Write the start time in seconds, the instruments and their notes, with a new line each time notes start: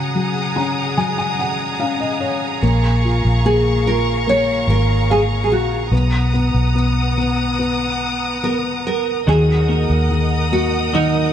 Already playing: felt piano C#3 C#4, nylon-string guitar F#4, string section G#4 F#5 A#5 D#6
0.15 felt piano F#3
0.56 felt piano C#4 A#5
0.97 felt piano F#3 G#5
1.18 felt piano G#5
1.39 felt piano F#5
1.79 felt piano C#4 F5
2.00 felt piano D#5
2.20 felt piano C#5
2.62 fingered electric bass A#1, felt piano A#3, string section F5 C#6
3.05 felt piano F4
3.25 fingered electric bass A#1
3.45 felt piano A#3, nylon-string guitar G#4
3.86 felt piano F4, nylon-string guitar A#4
4.27 felt piano A#3, nylon-string guitar C#5
4.67 fingered electric bass G#1, nylon-string guitar A#4
5.10 nylon-string guitar G#4, felt piano F5
5.44 nylon-string guitar G#4
5.50 fingered electric bass A#1, nylon-string guitar F#4
5.92 fingered electric bass B1, felt piano B3, string section B3 F#5 D#6
6.33 felt piano B3
6.54 fingered electric bass B1
6.75 felt piano B3
7.17 felt piano B3
7.59 felt piano B3
8.43 felt piano B3, nylon-string guitar A#4
8.85 fingered electric bass C#2, nylon-string guitar A#4
9.27 fingered electric bass D#2, felt piano D#3, clean electric guitar D#3 F#3 D#4 F#4 A#4, nylon-string guitar G#4, string section A#4 D#5 F#5 D#6
9.68 felt piano A#3, clean electric guitar D#4 F#4 A#4
9.90 fingered electric bass D#2
10.09 felt piano D#3
10.52 felt piano A#3, nylon-string guitar F#4
10.92 felt piano D#3, clean electric guitar F#3 D#4 F#4 A#4, nylon-string guitar D#4